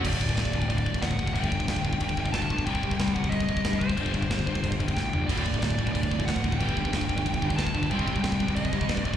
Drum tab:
CC |x---x---x---x---|x---x---x---x---|x---x---x---x---|x---x---x-------|
SD |----o-------o---|----o-------o---|----o-------o---|----o-------o---|
FT |----------------|----------------|----------------|--------------o-|
BD |oooooooooooooooo|oooooooooooooooo|oooooooooooooooo|ooooooooooooo---|

CC |x---x---x---x---|x---x---x---x---|x---x---x---x---|
SD |----o-------o---|----o-------o---|----o-------o---|
FT |----------------|----------------|----------------|
BD |oooooooooooooooo|oooooooooooooooo|oooooooooooooooo|